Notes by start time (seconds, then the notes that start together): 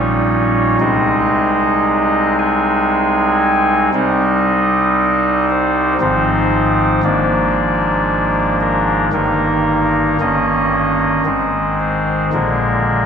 Already playing: A#1 A#2 G3 C#4 D#4 C#5
0.80 C2 C3 G#3 C4 D#4 D#5
2.39 G#5
3.94 C2 C3 G3 C4 D#4 D#5
5.50 C5
6.01 G#1 G#2 F3 C4 D#4 C5
7.03 G#1 G#2 F3 A#3 D4 D5
8.61 A#4
9.13 G1 G2 D#3 A#3 D#4 A#4
10.21 G1 G2 D#3 A#3 C#4 D#5
11.26 G#1 G#2 D#3 G#3 C4
11.80 C5
12.33 A#1 A#2 D3 G#3 A#3 A#4